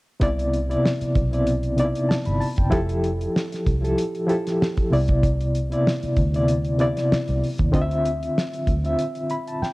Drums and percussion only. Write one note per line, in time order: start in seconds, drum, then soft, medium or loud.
0.21 kick loud
0.21 closed hi-hat medium
0.39 closed hi-hat soft
0.54 closed hi-hat medium
0.71 closed hi-hat soft
0.86 snare medium
1.01 closed hi-hat soft
1.15 kick medium
1.15 closed hi-hat medium
1.33 closed hi-hat soft
1.47 closed hi-hat medium
1.63 closed hi-hat soft
1.78 closed hi-hat medium
1.95 closed hi-hat soft
2.11 snare loud
2.25 closed hi-hat soft
2.41 open hi-hat medium
2.56 kick medium
2.56 closed hi-hat soft
2.72 kick loud
2.72 closed hi-hat medium
2.89 closed hi-hat soft
3.04 closed hi-hat medium
3.21 closed hi-hat soft
3.36 snare medium
3.52 snare soft
3.52 closed hi-hat soft
3.66 kick medium
3.66 closed hi-hat medium
3.85 closed hi-hat soft
3.98 closed hi-hat medium
4.15 closed hi-hat soft
4.29 closed hi-hat medium
4.47 snare soft
4.47 closed hi-hat soft
4.62 snare medium
4.77 kick medium
4.77 closed hi-hat soft
4.93 open hi-hat medium
5.08 kick medium
5.08 closed hi-hat soft
5.23 kick loud
5.23 closed hi-hat medium
5.41 closed hi-hat soft
5.55 closed hi-hat medium
5.72 closed hi-hat soft
5.87 snare loud
6.03 closed hi-hat soft
6.17 kick medium
6.17 closed hi-hat medium
6.34 closed hi-hat soft
6.48 closed hi-hat medium
6.65 closed hi-hat soft
6.79 closed hi-hat medium
6.97 snare soft
6.97 closed hi-hat soft
7.12 snare loud
7.28 closed hi-hat soft
7.44 open hi-hat medium
7.58 kick medium
7.58 closed hi-hat soft
7.74 kick loud
7.74 closed hi-hat medium
7.91 closed hi-hat soft
8.05 closed hi-hat medium
8.23 closed hi-hat soft
8.38 snare medium
8.54 closed hi-hat soft
8.67 kick medium
8.67 closed hi-hat medium
8.85 closed hi-hat soft
8.99 closed hi-hat medium
9.15 closed hi-hat soft
9.30 closed hi-hat medium
9.47 closed hi-hat soft
9.63 snare soft